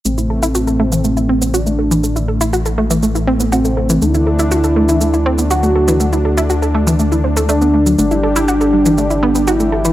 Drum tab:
SH |xx-xxx-xxx-xxx-x|xx-xxx-xxx-xxx-x|xx-xxx-xxx-xxx-x|xx-xxx-xxx-xxx-x|

SH |xx-xxx-xxx-xxx-x|